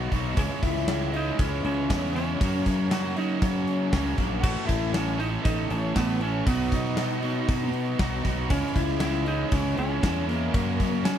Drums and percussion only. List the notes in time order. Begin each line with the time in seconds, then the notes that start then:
0.12 kick, open hi-hat
0.37 kick, open hi-hat
0.63 kick, open hi-hat
0.76 snare
0.88 snare, open hi-hat
1.14 open hi-hat
1.39 kick, open hi-hat
1.65 open hi-hat
1.90 kick, snare, open hi-hat
2.16 snare, open hi-hat
2.41 kick, open hi-hat
2.66 kick, open hi-hat
2.91 snare, open hi-hat
3.17 open hi-hat
3.42 kick, open hi-hat
3.67 open hi-hat
3.93 kick, snare, open hi-hat
4.18 kick, open hi-hat
4.43 kick, crash
4.69 kick, open hi-hat
4.82 snare
4.94 snare, open hi-hat
5.20 open hi-hat
5.45 kick, open hi-hat
5.70 open hi-hat
5.96 kick, snare, open hi-hat
6.21 open hi-hat
6.47 kick, open hi-hat
6.72 kick, open hi-hat
6.85 snare
6.97 snare, open hi-hat
7.23 open hi-hat
7.49 kick, open hi-hat
7.73 open hi-hat
7.99 kick, snare, open hi-hat
8.25 kick, snare, open hi-hat
8.50 kick, open hi-hat
8.76 kick, open hi-hat
8.88 snare
9.00 snare, open hi-hat
9.26 open hi-hat
9.52 kick, open hi-hat
9.77 open hi-hat
10.03 kick, snare, open hi-hat
10.29 snare, open hi-hat
10.54 kick, open hi-hat
10.80 kick, open hi-hat
11.05 snare, open hi-hat